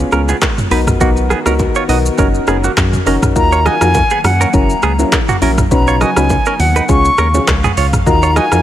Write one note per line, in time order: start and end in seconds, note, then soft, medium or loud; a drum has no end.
0.00 0.70 C#3 medium
0.00 0.70 G#3 medium
0.00 0.10 B3 medium
0.00 0.70 B3 medium
0.00 0.10 C#4 medium
0.00 0.10 F4 medium
0.00 0.70 F4 medium
0.00 0.10 G#4 loud
0.12 0.34 C#2 medium
0.12 0.32 B3 medium
0.12 0.32 C#4 medium
0.12 0.21 C#4 medium
0.12 0.32 F4 medium
0.12 0.32 G#4 medium
0.12 0.21 A#4 medium
0.12 cross-stick loud
0.12 shaker medium
0.29 0.36 B3 medium
0.29 0.35 G#4 medium
0.29 low bongo medium
0.29 shaker medium
0.42 kick loud
0.42 cross-stick loud
0.42 clap loud
0.42 high bongo medium
0.42 shaker medium
0.58 mid tom medium
0.58 shaker soft
0.71 0.93 B1 medium
0.71 3.33 D#3 medium
0.71 0.98 B3 medium
0.71 2.17 B3 medium
0.71 0.98 D#4 medium
0.71 0.80 D#4 medium
0.71 2.17 F#4 medium
0.71 0.99 F#4 medium
0.71 3.33 A#4 medium
0.71 0.99 A#4 medium
0.71 0.80 B4 medium
0.71 open hi-hat medium
0.71 shaker medium
0.87 kick medium
0.87 cross-stick medium
0.87 mid tom loud
0.87 shaker medium
1.00 1.34 B1 loud
1.00 1.10 A#3 medium
1.00 1.42 B3 medium
1.00 1.42 D#4 medium
1.00 1.42 F#4 medium
1.00 1.09 F#4 medium
1.00 1.42 A#4 loud
1.00 kick loud
1.00 low conga medium
1.00 shaker medium
1.17 shaker soft
1.30 1.39 B3 medium
1.30 1.38 G#4 medium
1.30 cross-stick medium
1.30 high bongo medium
1.30 low conga medium
1.30 shaker soft
1.46 1.68 C#2 medium
1.46 1.86 B3 medium
1.46 1.54 C#4 medium
1.46 1.86 D#4 medium
1.46 1.86 F#4 medium
1.46 1.53 A#4 medium
1.46 1.86 A#4 medium
1.46 cross-stick loud
1.46 low bongo medium
1.46 shaker loud
1.59 kick medium
1.59 high bongo medium
1.59 shaker medium
1.75 1.83 F4 medium
1.75 1.83 C#5 medium
1.75 shaker medium
1.88 2.10 B1 loud
1.88 2.16 B3 medium
1.88 2.16 D#4 medium
1.88 2.16 F#4 medium
1.88 1.98 F#4 medium
1.88 2.16 A#4 medium
1.88 1.97 D#5 medium
1.88 open hi-hat medium
1.88 low bongo medium
1.88 shaker medium
2.06 shaker loud
2.18 2.40 F#1 loud
2.18 2.45 C#4 medium
2.18 3.35 C#4 medium
2.18 2.27 C#4 medium
2.18 2.45 D#4 medium
2.18 3.35 F#4 medium
2.18 2.46 F#4 medium
2.18 2.46 A#4 loud
2.18 2.27 A#4 medium
2.18 kick loud
2.18 low bongo medium
2.18 low conga medium
2.18 shaker medium
2.34 shaker medium
2.47 2.69 F#1 medium
2.47 2.57 B3 medium
2.47 2.67 C#4 medium
2.47 2.67 D#4 medium
2.47 2.67 F#4 medium
2.47 2.56 G#4 medium
2.47 2.67 A#4 medium
2.47 cross-stick loud
2.47 shaker medium
2.64 2.72 A#3 medium
2.64 2.71 F#4 medium
2.64 low bongo medium
2.64 shaker medium
2.77 2.99 F#2 loud
2.77 kick loud
2.77 cross-stick loud
2.77 clap loud
2.77 high bongo medium
2.77 shaker medium
2.93 mid tom medium
2.93 shaker medium
3.06 3.18 F#1 medium
3.06 3.34 C#4 medium
3.06 3.16 C#4 medium
3.06 3.34 D#4 medium
3.06 3.34 F#4 medium
3.06 3.34 A#4 medium
3.06 3.15 A#4 medium
3.06 open hi-hat medium
3.06 shaker medium
3.23 kick medium
3.23 cross-stick medium
3.23 mid tom loud
3.23 shaker medium
3.36 3.69 D#2 loud
3.36 4.52 D#3 medium
3.36 6.85 F#3 medium
3.36 5.69 A#3 medium
3.36 3.77 D#4 loud
3.36 3.77 F4 medium
3.36 3.78 F#4 medium
3.36 3.78 A#4 loud
3.36 4.52 F5 medium
3.36 3.67 A#5 loud
3.36 kick loud
3.36 low conga medium
3.36 shaker medium
3.52 3.60 F4 medium
3.52 3.59 C#5 medium
3.52 shaker medium
3.66 3.74 F#4 medium
3.66 3.74 D#5 medium
3.66 4.24 G#5 loud
3.66 cross-stick medium
3.66 high bongo medium
3.66 low conga medium
3.66 shaker soft
3.81 4.03 F2 medium
3.81 3.99 D#4 medium
3.81 3.99 F4 medium
3.81 3.99 F#4 medium
3.81 3.99 A#4 medium
3.81 cross-stick loud
3.81 low bongo medium
3.81 shaker loud
3.94 kick medium
3.94 high bongo medium
3.94 shaker medium
4.10 4.19 B3 medium
4.10 4.18 G#4 medium
4.10 shaker medium
4.24 4.46 F#2 medium
4.24 4.55 F#5 medium
4.24 cross-stick loud
4.24 open hi-hat medium
4.24 low bongo medium
4.24 shaker medium
4.41 4.48 C#4 medium
4.41 4.47 A#4 medium
4.41 high bongo medium
4.41 shaker loud
4.53 4.75 F#1 loud
4.53 8.03 C#3 medium
4.53 4.73 C#4 medium
4.53 4.73 E4 medium
4.53 5.70 E4 medium
4.53 4.73 F#4 medium
4.53 4.73 A#4 loud
4.53 5.13 A#5 loud
4.53 kick loud
4.53 low conga medium
4.53 shaker medium
4.70 shaker medium
4.82 5.04 C#2 medium
4.82 4.92 B3 medium
4.82 4.92 G#4 medium
4.82 cross-stick loud
4.82 shaker medium
4.99 5.16 C#4 medium
4.99 5.17 E4 medium
4.99 5.17 F#4 medium
4.99 5.17 A#4 medium
4.99 low bongo medium
4.99 shaker medium
5.12 kick loud
5.12 cross-stick loud
5.12 clap loud
5.12 high bongo medium
5.12 shaker medium
5.29 5.36 A#3 medium
5.29 5.36 F#4 medium
5.29 mid tom medium
5.29 shaker medium
5.42 5.63 A#1 medium
5.42 5.61 C#4 medium
5.42 5.51 C#4 medium
5.42 5.61 E4 medium
5.42 5.61 F#4 medium
5.42 5.62 A#4 medium
5.42 5.50 A#4 medium
5.42 open hi-hat medium
5.42 shaker medium
5.58 kick medium
5.58 cross-stick medium
5.58 mid tom medium
5.58 shaker medium
5.71 6.04 B1 loud
5.71 6.88 B3 medium
5.71 6.13 C#4 loud
5.71 6.13 D#4 medium
5.71 6.88 D#4 medium
5.71 6.13 F#4 medium
5.71 6.13 B4 loud
5.71 6.03 A#5 loud
5.71 kick loud
5.71 low conga medium
5.71 shaker medium
5.87 5.95 F4 medium
5.87 5.94 C#5 medium
5.87 shaker medium
6.01 6.10 F#4 medium
6.01 6.09 D#5 medium
6.01 6.62 G#5 loud
6.01 cross-stick medium
6.01 high bongo medium
6.01 low conga medium
6.01 shaker soft
6.16 6.38 C#2 medium
6.16 6.34 C#4 medium
6.16 6.34 D#4 medium
6.16 6.34 F#4 medium
6.16 6.34 B4 medium
6.16 cross-stick loud
6.16 low bongo medium
6.16 shaker loud
6.30 kick medium
6.30 high bongo medium
6.30 shaker medium
6.45 6.54 C#4 medium
6.45 6.53 A#4 medium
6.45 shaker medium
6.59 6.81 D#2 medium
6.59 6.91 F#5 medium
6.59 open hi-hat medium
6.59 low bongo medium
6.59 shaker medium
6.76 6.83 D#4 medium
6.76 6.83 B4 medium
6.76 high bongo medium
6.76 shaker loud
6.89 7.10 C#2 loud
6.89 8.05 F3 medium
6.89 8.05 G#3 medium
6.89 7.08 C#4 medium
6.89 7.08 F4 medium
6.89 7.08 G#4 medium
6.89 7.09 C#5 loud
6.89 8.62 F5 medium
6.89 7.48 C#6 loud
6.89 kick loud
6.89 low conga medium
6.89 shaker medium
7.05 shaker medium
7.18 7.40 D#2 medium
7.18 7.27 C#4 medium
7.18 7.27 A#4 medium
7.18 cross-stick loud
7.18 shaker medium
7.34 7.52 C#4 medium
7.34 7.52 F4 medium
7.34 7.52 G#4 medium
7.34 7.52 C#5 medium
7.34 low bongo medium
7.34 shaker medium
7.48 7.69 C#2 loud
7.48 kick loud
7.48 cross-stick loud
7.48 clap loud
7.48 high bongo medium
7.48 shaker medium
7.64 7.72 B3 medium
7.64 7.71 G#4 medium
7.64 mid tom medium
7.64 shaker medium
7.77 7.98 C#2 medium
7.77 7.86 F4 medium
7.77 7.86 C#5 medium
7.77 open hi-hat medium
7.77 shaker medium
7.93 kick medium
7.93 cross-stick medium
7.93 mid tom loud
7.93 shaker medium
8.06 8.40 D#2 loud
8.06 8.62 D#3 medium
8.06 8.62 F#3 medium
8.06 8.62 A#3 medium
8.06 8.48 D#4 loud
8.06 8.48 F4 medium
8.06 8.48 F#4 medium
8.06 8.48 A#4 loud
8.06 8.38 A#5 loud
8.06 kick loud
8.06 low conga medium
8.06 shaker medium
8.23 8.30 F4 medium
8.23 8.30 C#5 medium
8.23 shaker medium
8.36 8.45 F#4 medium
8.36 8.44 D#5 medium
8.36 8.62 G#5 loud
8.36 cross-stick medium
8.36 high bongo medium
8.36 low conga medium
8.36 shaker soft
8.52 8.62 F2 loud
8.52 8.62 D#4 medium
8.52 8.62 F4 medium
8.52 8.62 F#4 medium
8.52 8.62 A#4 medium
8.52 cross-stick loud
8.52 low bongo medium
8.52 shaker loud